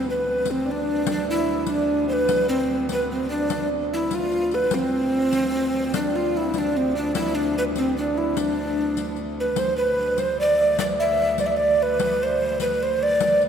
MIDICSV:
0, 0, Header, 1, 5, 480
1, 0, Start_track
1, 0, Tempo, 404585
1, 1272, Time_signature, 6, 3, 24, 8
1, 16000, End_track
2, 0, Start_track
2, 0, Title_t, "Recorder"
2, 0, Program_c, 0, 74
2, 115, Note_on_c, 0, 71, 84
2, 601, Note_on_c, 0, 60, 84
2, 619, Note_off_c, 0, 71, 0
2, 842, Note_on_c, 0, 62, 85
2, 860, Note_off_c, 0, 60, 0
2, 1298, Note_off_c, 0, 62, 0
2, 1318, Note_on_c, 0, 62, 100
2, 1520, Note_off_c, 0, 62, 0
2, 1544, Note_on_c, 0, 64, 97
2, 2011, Note_on_c, 0, 62, 91
2, 2029, Note_off_c, 0, 64, 0
2, 2467, Note_off_c, 0, 62, 0
2, 2475, Note_on_c, 0, 72, 82
2, 2525, Note_on_c, 0, 71, 89
2, 2537, Note_off_c, 0, 72, 0
2, 2922, Note_off_c, 0, 71, 0
2, 2950, Note_on_c, 0, 60, 95
2, 3400, Note_off_c, 0, 60, 0
2, 3464, Note_on_c, 0, 71, 91
2, 3675, Note_off_c, 0, 71, 0
2, 3690, Note_on_c, 0, 60, 86
2, 3908, Note_off_c, 0, 60, 0
2, 3914, Note_on_c, 0, 62, 107
2, 4363, Note_off_c, 0, 62, 0
2, 4668, Note_on_c, 0, 64, 96
2, 4921, Note_on_c, 0, 65, 110
2, 4939, Note_off_c, 0, 64, 0
2, 5390, Note_on_c, 0, 71, 91
2, 5407, Note_off_c, 0, 65, 0
2, 5625, Note_on_c, 0, 60, 109
2, 5643, Note_off_c, 0, 71, 0
2, 7054, Note_off_c, 0, 60, 0
2, 7061, Note_on_c, 0, 62, 95
2, 7302, Note_on_c, 0, 65, 104
2, 7320, Note_off_c, 0, 62, 0
2, 7555, Note_on_c, 0, 64, 94
2, 7573, Note_off_c, 0, 65, 0
2, 7809, Note_on_c, 0, 62, 96
2, 7827, Note_off_c, 0, 64, 0
2, 8027, Note_on_c, 0, 60, 87
2, 8045, Note_off_c, 0, 62, 0
2, 8250, Note_off_c, 0, 60, 0
2, 8257, Note_on_c, 0, 62, 91
2, 8473, Note_off_c, 0, 62, 0
2, 8487, Note_on_c, 0, 64, 111
2, 8718, Note_on_c, 0, 62, 93
2, 8736, Note_off_c, 0, 64, 0
2, 8959, Note_off_c, 0, 62, 0
2, 8992, Note_on_c, 0, 71, 77
2, 9063, Note_off_c, 0, 71, 0
2, 9227, Note_on_c, 0, 60, 95
2, 9438, Note_off_c, 0, 60, 0
2, 9458, Note_on_c, 0, 62, 80
2, 9700, Note_on_c, 0, 64, 90
2, 9717, Note_off_c, 0, 62, 0
2, 9931, Note_on_c, 0, 62, 88
2, 9949, Note_off_c, 0, 64, 0
2, 10884, Note_off_c, 0, 62, 0
2, 11153, Note_on_c, 0, 71, 79
2, 11374, Note_on_c, 0, 72, 89
2, 11392, Note_off_c, 0, 71, 0
2, 11584, Note_off_c, 0, 72, 0
2, 11592, Note_on_c, 0, 71, 94
2, 12091, Note_on_c, 0, 72, 93
2, 12109, Note_off_c, 0, 71, 0
2, 12323, Note_off_c, 0, 72, 0
2, 12347, Note_on_c, 0, 74, 92
2, 12778, Note_off_c, 0, 74, 0
2, 12810, Note_on_c, 0, 74, 99
2, 12881, Note_off_c, 0, 74, 0
2, 13047, Note_on_c, 0, 76, 100
2, 13529, Note_on_c, 0, 74, 100
2, 13547, Note_off_c, 0, 76, 0
2, 13598, Note_on_c, 0, 76, 84
2, 13616, Note_off_c, 0, 74, 0
2, 13721, Note_on_c, 0, 74, 99
2, 13739, Note_off_c, 0, 76, 0
2, 14028, Note_on_c, 0, 71, 101
2, 14045, Note_off_c, 0, 74, 0
2, 14510, Note_on_c, 0, 72, 95
2, 14527, Note_off_c, 0, 71, 0
2, 14954, Note_off_c, 0, 72, 0
2, 14961, Note_on_c, 0, 71, 94
2, 15219, Note_on_c, 0, 72, 94
2, 15237, Note_off_c, 0, 71, 0
2, 15457, Note_on_c, 0, 74, 112
2, 15474, Note_off_c, 0, 72, 0
2, 15919, Note_off_c, 0, 74, 0
2, 16000, End_track
3, 0, Start_track
3, 0, Title_t, "Harp"
3, 0, Program_c, 1, 46
3, 0, Note_on_c, 1, 60, 77
3, 0, Note_on_c, 1, 62, 73
3, 0, Note_on_c, 1, 64, 81
3, 48, Note_on_c, 1, 59, 68
3, 119, Note_off_c, 1, 60, 0
3, 285, Note_off_c, 1, 59, 0
3, 290, Note_on_c, 1, 59, 62
3, 536, Note_on_c, 1, 60, 72
3, 607, Note_off_c, 1, 59, 0
3, 769, Note_off_c, 1, 62, 0
3, 774, Note_on_c, 1, 62, 81
3, 978, Note_off_c, 1, 64, 0
3, 1255, Note_off_c, 1, 62, 0
3, 1260, Note_on_c, 1, 62, 85
3, 1518, Note_on_c, 1, 64, 88
3, 1966, Note_off_c, 1, 62, 0
3, 1970, Note_on_c, 1, 62, 81
3, 2440, Note_on_c, 1, 59, 67
3, 2511, Note_off_c, 1, 60, 0
3, 2697, Note_off_c, 1, 59, 0
3, 2702, Note_on_c, 1, 59, 82
3, 2958, Note_on_c, 1, 60, 83
3, 3029, Note_off_c, 1, 59, 0
3, 3443, Note_on_c, 1, 59, 84
3, 3514, Note_off_c, 1, 60, 0
3, 3683, Note_on_c, 1, 60, 77
3, 3754, Note_off_c, 1, 59, 0
3, 3904, Note_off_c, 1, 62, 0
3, 3909, Note_on_c, 1, 62, 77
3, 4157, Note_off_c, 1, 62, 0
3, 4161, Note_on_c, 1, 62, 86
3, 4617, Note_off_c, 1, 64, 0
3, 4655, Note_on_c, 1, 64, 75
3, 4895, Note_on_c, 1, 65, 94
3, 4967, Note_off_c, 1, 64, 0
3, 5369, Note_on_c, 1, 59, 71
3, 5416, Note_off_c, 1, 59, 0
3, 5421, Note_on_c, 1, 59, 57
3, 5441, Note_off_c, 1, 60, 0
3, 5482, Note_off_c, 1, 59, 0
3, 5487, Note_on_c, 1, 59, 78
3, 5587, Note_on_c, 1, 60, 89
3, 5658, Note_off_c, 1, 59, 0
3, 7027, Note_off_c, 1, 62, 0
3, 7032, Note_on_c, 1, 62, 88
3, 7218, Note_on_c, 1, 67, 67
3, 7264, Note_off_c, 1, 65, 0
3, 7269, Note_on_c, 1, 65, 88
3, 7745, Note_off_c, 1, 62, 0
3, 7750, Note_on_c, 1, 62, 80
3, 7984, Note_off_c, 1, 60, 0
3, 7988, Note_on_c, 1, 60, 77
3, 8237, Note_off_c, 1, 62, 0
3, 8242, Note_on_c, 1, 62, 75
3, 8457, Note_on_c, 1, 64, 84
3, 8528, Note_off_c, 1, 65, 0
3, 8698, Note_off_c, 1, 62, 0
3, 8703, Note_on_c, 1, 62, 82
3, 9196, Note_off_c, 1, 60, 0
3, 9201, Note_on_c, 1, 60, 76
3, 9412, Note_off_c, 1, 62, 0
3, 9417, Note_on_c, 1, 62, 76
3, 9663, Note_off_c, 1, 64, 0
3, 9668, Note_on_c, 1, 64, 73
3, 9904, Note_off_c, 1, 62, 0
3, 9908, Note_on_c, 1, 62, 78
3, 10010, Note_off_c, 1, 67, 0
3, 11124, Note_on_c, 1, 71, 62
3, 11195, Note_off_c, 1, 60, 0
3, 11363, Note_on_c, 1, 72, 78
3, 11434, Note_off_c, 1, 71, 0
3, 11596, Note_on_c, 1, 71, 74
3, 11667, Note_off_c, 1, 72, 0
3, 12058, Note_on_c, 1, 72, 81
3, 12130, Note_off_c, 1, 71, 0
3, 12319, Note_on_c, 1, 74, 81
3, 12549, Note_on_c, 1, 76, 73
3, 12766, Note_off_c, 1, 64, 0
3, 12797, Note_off_c, 1, 74, 0
3, 12801, Note_on_c, 1, 74, 87
3, 13034, Note_off_c, 1, 76, 0
3, 13038, Note_on_c, 1, 76, 80
3, 13229, Note_off_c, 1, 62, 0
3, 13287, Note_off_c, 1, 76, 0
3, 13291, Note_on_c, 1, 76, 81
3, 13513, Note_off_c, 1, 74, 0
3, 13518, Note_on_c, 1, 74, 86
3, 13686, Note_off_c, 1, 74, 0
3, 13691, Note_on_c, 1, 74, 80
3, 14005, Note_on_c, 1, 71, 67
3, 14076, Note_off_c, 1, 72, 0
3, 14232, Note_off_c, 1, 71, 0
3, 14237, Note_on_c, 1, 71, 88
3, 14492, Note_on_c, 1, 72, 89
3, 14563, Note_off_c, 1, 71, 0
3, 14935, Note_on_c, 1, 71, 84
3, 15006, Note_off_c, 1, 72, 0
3, 15192, Note_on_c, 1, 72, 78
3, 15264, Note_off_c, 1, 71, 0
3, 15336, Note_off_c, 1, 76, 0
3, 15414, Note_off_c, 1, 74, 0
3, 15419, Note_on_c, 1, 74, 71
3, 15652, Note_off_c, 1, 74, 0
3, 15657, Note_on_c, 1, 74, 89
3, 16000, Note_off_c, 1, 72, 0
3, 16000, Note_off_c, 1, 74, 0
3, 16000, End_track
4, 0, Start_track
4, 0, Title_t, "Viola da gamba"
4, 0, Program_c, 2, 42
4, 0, Note_on_c, 2, 38, 59
4, 5581, Note_off_c, 2, 38, 0
4, 5588, Note_on_c, 2, 38, 65
4, 11344, Note_off_c, 2, 38, 0
4, 11351, Note_on_c, 2, 38, 67
4, 16000, Note_off_c, 2, 38, 0
4, 16000, End_track
5, 0, Start_track
5, 0, Title_t, "Riq"
5, 540, Note_on_c, 9, 54, 47
5, 658, Note_off_c, 9, 54, 0
5, 1264, Note_on_c, 9, 54, 75
5, 1383, Note_off_c, 9, 54, 0
5, 1975, Note_on_c, 9, 54, 51
5, 2094, Note_off_c, 9, 54, 0
5, 2713, Note_on_c, 9, 54, 67
5, 2831, Note_off_c, 9, 54, 0
5, 3428, Note_on_c, 9, 54, 53
5, 3547, Note_off_c, 9, 54, 0
5, 4153, Note_on_c, 9, 54, 66
5, 4271, Note_off_c, 9, 54, 0
5, 4875, Note_on_c, 9, 54, 49
5, 4993, Note_off_c, 9, 54, 0
5, 5119, Note_on_c, 9, 54, 19
5, 5238, Note_off_c, 9, 54, 0
5, 5355, Note_on_c, 9, 54, 23
5, 5474, Note_off_c, 9, 54, 0
5, 5587, Note_on_c, 9, 54, 66
5, 5706, Note_off_c, 9, 54, 0
5, 6318, Note_on_c, 9, 54, 51
5, 6437, Note_off_c, 9, 54, 0
5, 7045, Note_on_c, 9, 54, 75
5, 7164, Note_off_c, 9, 54, 0
5, 7755, Note_on_c, 9, 54, 49
5, 7874, Note_off_c, 9, 54, 0
5, 8482, Note_on_c, 9, 54, 73
5, 8601, Note_off_c, 9, 54, 0
5, 9201, Note_on_c, 9, 54, 43
5, 9319, Note_off_c, 9, 54, 0
5, 9926, Note_on_c, 9, 54, 55
5, 10044, Note_off_c, 9, 54, 0
5, 10641, Note_on_c, 9, 54, 41
5, 10760, Note_off_c, 9, 54, 0
5, 10872, Note_on_c, 9, 54, 18
5, 10991, Note_off_c, 9, 54, 0
5, 11345, Note_on_c, 9, 54, 64
5, 11464, Note_off_c, 9, 54, 0
5, 12073, Note_on_c, 9, 54, 48
5, 12192, Note_off_c, 9, 54, 0
5, 12796, Note_on_c, 9, 54, 70
5, 12915, Note_off_c, 9, 54, 0
5, 13501, Note_on_c, 9, 54, 51
5, 13620, Note_off_c, 9, 54, 0
5, 14232, Note_on_c, 9, 54, 64
5, 14350, Note_off_c, 9, 54, 0
5, 14945, Note_on_c, 9, 54, 48
5, 15064, Note_off_c, 9, 54, 0
5, 15665, Note_on_c, 9, 54, 65
5, 15784, Note_off_c, 9, 54, 0
5, 15913, Note_on_c, 9, 54, 21
5, 16000, Note_off_c, 9, 54, 0
5, 16000, End_track
0, 0, End_of_file